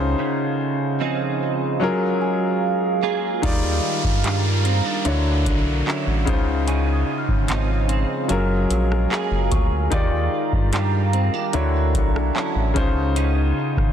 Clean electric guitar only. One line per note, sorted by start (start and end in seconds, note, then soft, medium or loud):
0.00 0.18 C#3 medium
0.19 1.89 C#3 medium
1.00 1.81 F3 medium
1.00 1.90 C4 medium
1.00 1.90 D#4 medium
1.81 3.51 F#3 medium
3.03 3.51 A#3 medium
3.03 3.43 F4 medium
3.03 3.52 G#4 medium
3.43 5.05 D#3 medium
3.43 4.24 F4 medium
4.24 5.13 G3 medium
4.24 4.64 D4 medium
4.24 5.14 F4 medium
4.65 4.85 C4 medium
4.85 5.13 D4 soft
5.05 6.27 D3 medium
5.86 6.35 F#3 medium
5.86 6.71 C#4 medium
5.86 6.36 E4 medium
6.27 6.66 C#3 medium
6.68 8.38 C#3 medium
6.68 7.49 D#4 medium
7.49 8.29 F3 medium
7.49 7.88 C4 medium
7.49 8.38 D#4 medium
7.89 8.38 C4 medium
8.29 10.00 F#3 medium
9.10 10.00 A#3 medium
9.10 9.91 F4 medium
9.10 10.00 G#4 medium
9.92 11.54 D#3 medium
9.92 10.73 F4 medium
10.73 11.62 G3 medium
10.73 11.13 D4 medium
10.73 11.63 F4 medium
11.13 11.34 C4 medium
11.34 11.62 D4 medium
11.54 12.75 D3 medium
12.35 12.84 F#3 medium
12.35 13.20 C#4 medium
12.35 12.84 E4 medium
12.76 13.15 C#3 medium
13.16 13.93 C#3 medium
13.16 13.93 D#4 medium